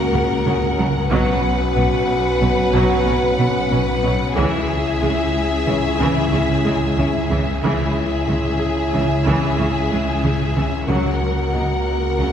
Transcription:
Already playing: detuned saw bass C#2, french horn section A#3 F#4, violin section A#4 F#5
0.13 double bass section C#2, cello section C#3, viola section A#3
0.46 double bass section C#2, cello section C#3, viola section C#4, felt piano G#4
0.78 double bass section C#2, cello section C#3, viola section F#3
1.10 double bass section B1, detuned saw bass B1, cello section B2, viola section F#3, french horn section C#4 F#4, violin section B4 F#5
1.76 double bass section B1, cello section B2, viola section B3
2.41 double bass section B1, cello section B2, viola section F#3
2.73 double bass section B1, cello section B2, viola section F#3
3.06 double bass section B1, cello section B2, viola section C#4
3.39 double bass section B1, cello section B2, viola section B3
3.72 double bass section B1, cello section B2, viola section C#4
4.04 double bass section B1, cello section B2, viola section F#3
4.36 double bass section C#2, detuned saw bass C#2, cello section C#3, viola section E3, french horn section C#4 E4, violin section G#4 E5
5.01 double bass section C#2, cello section C#3, viola section G#3
5.67 double bass section C#2, cello section C#3, viola section E3, felt piano C#5
5.99 double bass section C#2, cello section C#3, viola section E3
6.32 double bass section C#2, cello section C#3, viola section C#4
6.65 double bass section C#2, cello section C#3, viola section G#3
6.97 double bass section C#2, cello section C#3, viola section C#4
7.31 double bass section C#2, cello section C#3, viola section E3
7.62 detuned saw bass C#2, double bass section C#2, cello section C#3, viola section E3, french horn section C#4 E4, violin section G#4 E5
8.28 double bass section C#2, cello section C#3, viola section G#3
8.59 felt piano G#4
8.93 double bass section C#2, cello section C#3, viola section E3
9.26 double bass section C#2, cello section C#3, viola section E3
9.59 double bass section C#2, cello section C#3, viola section C#4
9.91 double bass section C#2, cello section C#3, viola section G#3
10.24 double bass section C#2, cello section C#3, viola section C#4
10.56 double bass section C#2, cello section C#3, viola section E3
10.88 double bass section C#2, detuned saw bass C#2, cello section C#3, viola section F#3, french horn section A#3 F#4, felt piano A#4, violin section A#4 F#5
11.54 double bass section C#2, cello section C#3, viola section A#3, felt piano D#5
12.19 double bass section C#2, cello section C#3, viola section F#3

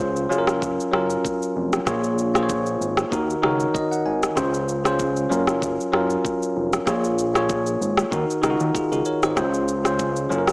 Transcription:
Already playing: analog synth bass C#2, tine electric piano C#3 C#4 F4 C5
0.00 kick
0.16 shaker
0.29 analog synth bass F#1, tine electric piano F#3 C#4 F4 G#4, shaker
0.38 tine electric piano A#4
0.47 cross-stick, shaker
0.62 kick, shaker
0.80 shaker
0.92 analog synth bass F#1, tine electric piano F#3 C#4 F4 A#4, cross-stick
1.10 shaker
1.25 kick, shaker
1.42 shaker
1.56 analog synth bass F1
1.73 cross-stick, shaker
1.85 analog synth bass A#1, tine electric piano A#3 F4 G#4 C#5, kick, cross-stick, shaker
2.04 shaker
2.18 shaker
2.34 tine electric piano A#3 F4 G#4 C5, cross-stick, shaker
2.43 tine electric piano C#5
2.49 kick, shaker
2.66 shaker
2.81 analog synth bass G#1, shaker
2.97 cross-stick, shaker
3.11 analog synth bass D#2, tine electric piano D#3 D#4 F#4 A#4, kick, shaker
3.30 shaker
3.42 analog synth bass C#2, tine electric piano D#3 D#4 F#4 A#4 C#5, cross-stick
3.60 shaker
3.74 tine electric piano D#5, kick, shaker
3.91 tine electric piano F#5, shaker
4.06 analog synth bass G#1, tine electric piano G#5
4.23 cross-stick, shaker
4.36 analog synth bass C#2, tine electric piano C#3 C#4 F4 C5, kick, cross-stick, shaker
4.54 shaker
4.68 shaker
4.84 tine electric piano C#3 C#4 F4 C5, cross-stick, shaker
4.99 kick, shaker
5.16 shaker
5.29 analog synth bass F#1, tine electric piano F#3 C#4 F4 A#4, shaker
5.47 cross-stick, shaker
5.62 kick, shaker
5.80 shaker
5.92 analog synth bass F#1, tine electric piano F#3 C#4 F4 A#4, cross-stick
6.10 shaker
6.25 kick, shaker
6.42 shaker
6.56 analog synth bass F1
6.73 cross-stick, shaker
6.86 analog synth bass A#1, tine electric piano A#3 F4 G#4 C#5, kick, cross-stick, shaker
7.04 shaker
7.18 shaker
7.34 tine electric piano A#3 F4 G#4 C#5, cross-stick, shaker
7.49 kick, shaker
7.66 shaker
7.81 analog synth bass G#1, shaker
7.97 cross-stick, shaker
8.11 analog synth bass D#2, tine electric piano D#3 D#4 F#4 A#4, kick, shaker
8.30 shaker
8.42 analog synth bass C#2, tine electric piano D#3 D#4 F4 A#4, cross-stick, shaker
8.50 tine electric piano F#4
8.60 analog synth bass D#2, shaker
8.74 tine electric piano F4 G#4, kick, shaker
8.92 analog synth bass C#2, tine electric piano F#4 A#4, shaker
9.05 tine electric piano A#4 C#5, shaker
9.23 analog synth bass G#1, tine electric piano C5 D#5, cross-stick, shaker
9.36 analog synth bass C#2, tine electric piano C#3 C#4 F4 C5, kick, cross-stick, shaker
9.54 shaker
9.68 shaker
9.84 tine electric piano C#3 C#4 F4 C5, cross-stick, shaker
9.99 kick, shaker
10.16 shaker
10.29 analog synth bass F#1, tine electric piano F#3 C#4 F4 A4, shaker
10.38 tine electric piano A#4
10.47 cross-stick, shaker

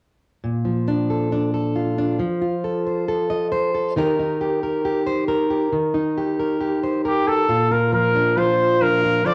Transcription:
0.44 steel-string acoustic guitar A#2
0.65 steel-string acoustic guitar F3
0.88 steel-string acoustic guitar D4
1.10 steel-string acoustic guitar A4
1.32 steel-string acoustic guitar D4
1.54 steel-string acoustic guitar A4
1.76 steel-string acoustic guitar F4
1.98 steel-string acoustic guitar D4
2.19 steel-string acoustic guitar F3
2.42 steel-string acoustic guitar F4
2.64 steel-string acoustic guitar A4
2.87 steel-string acoustic guitar C5
3.08 steel-string acoustic guitar A4
3.30 steel-string acoustic guitar D#5
3.52 steel-string acoustic guitar C5
3.75 steel-string acoustic guitar A4
3.96 steel-string acoustic guitar D#3 D#4 G4 A#4
4.19 steel-string acoustic guitar D#4
4.41 steel-string acoustic guitar G4
4.63 steel-string acoustic guitar A#4
4.85 steel-string acoustic guitar G4
5.06 steel-string acoustic guitar C5
5.28 steel-string acoustic guitar A#4
5.50 steel-string acoustic guitar G4
5.72 steel-string acoustic guitar D#3
5.94 steel-string acoustic guitar D#4
6.18 steel-string acoustic guitar G4
6.40 steel-string acoustic guitar A#4
6.61 steel-string acoustic guitar G4
6.83 steel-string acoustic guitar C5
7.05 trumpet G4, steel-string acoustic guitar A#4
7.27 steel-string acoustic guitar G4, trumpet A4
7.49 steel-string acoustic guitar A#2 F4
7.71 steel-string acoustic guitar F4, trumpet A#4
7.93 steel-string acoustic guitar F3, trumpet A#4
8.16 steel-string acoustic guitar D4
8.37 steel-string acoustic guitar F3 F4, trumpet C5
8.82 steel-string acoustic guitar F3 D4, trumpet A#4
9.04 steel-string acoustic guitar F4
9.25 steel-string acoustic guitar F3 F4 A4 C5, trumpet D5

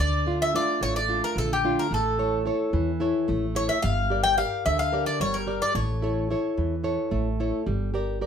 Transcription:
0.00 upright bass D2, nylon-string guitar D3, bouzouki D5
0.26 nylon-string guitar A3 D4 F4
0.42 bouzouki E5
0.54 nylon-string guitar A3 D4 F4, bouzouki D5
0.81 upright bass A1, nylon-string guitar A3, bouzouki C#5
0.96 bouzouki D5
1.09 nylon-string guitar A3 D4 F4
1.24 bouzouki A#4
1.36 upright bass A#1, nylon-string guitar D3, bouzouki A4
1.53 bouzouki G4
1.64 nylon-string guitar A3 D4 F4
1.79 bouzouki A#4
1.91 upright bass A1, nylon-string guitar A3, bouzouki A4
2.19 nylon-string guitar E4 A4 C#5
2.45 nylon-string guitar E4 A4 C#5
2.73 upright bass E2, nylon-string guitar E3
3.00 nylon-string guitar E4 A4 C#5
3.28 upright bass A1, nylon-string guitar A3
3.55 nylon-string guitar E4 A4 C#5, bouzouki C#5
3.69 bouzouki E5
3.82 upright bass G1, nylon-string guitar G3, bouzouki F5
4.10 nylon-string guitar G4 A#4 D5
4.23 bouzouki G5
4.38 nylon-string guitar G4 A#4 D5, bouzouki F5
4.65 upright bass D2, nylon-string guitar D3, bouzouki E5
4.79 bouzouki F5
4.92 nylon-string guitar G4 A#4 D5
5.06 bouzouki D5
5.20 upright bass G1, nylon-string guitar G3, bouzouki C#5
5.34 bouzouki A#4
5.47 nylon-string guitar G4 A#4 D5
5.62 bouzouki D5
5.75 upright bass A1, nylon-string guitar A3
6.02 nylon-string guitar E4 A4 C#5
6.30 nylon-string guitar E4 A4 C#5
6.58 upright bass E2, nylon-string guitar E3
6.84 nylon-string guitar E4 A4 C#5
7.11 upright bass A1, nylon-string guitar A3
7.40 nylon-string guitar E4 A4 C#5
7.66 upright bass G1, nylon-string guitar G3
7.94 nylon-string guitar G4 A#4 D5
8.21 nylon-string guitar G4 A#4 D5

